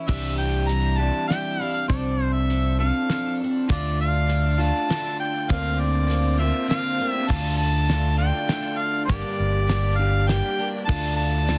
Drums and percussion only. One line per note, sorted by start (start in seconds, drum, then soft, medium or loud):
0.09 kick loud
0.09 crash loud
0.69 closed hi-hat medium
1.30 snare medium
1.30 closed hi-hat medium
1.90 kick loud
1.90 closed hi-hat medium
2.50 closed hi-hat medium
3.10 snare medium
3.10 closed hi-hat medium
3.69 kick loud
3.69 closed hi-hat medium
4.29 closed hi-hat medium
4.90 snare medium
4.90 closed hi-hat medium
5.50 kick loud
5.50 closed hi-hat medium
6.11 closed hi-hat medium
6.71 snare medium
6.71 closed hi-hat medium
7.30 kick loud
7.30 crash loud
7.30 shaker loud
7.90 snare medium
7.90 closed hi-hat medium
8.19 shaker medium
8.49 snare medium
8.49 closed hi-hat medium
8.94 shaker soft
9.09 kick loud
9.09 closed hi-hat medium
9.09 shaker medium
9.69 snare loud
9.69 closed hi-hat medium
9.99 shaker medium
10.29 snare medium
10.29 closed hi-hat medium
10.74 shaker soft
10.89 kick loud
10.89 crash loud
10.89 shaker medium
11.49 snare medium
11.49 closed hi-hat medium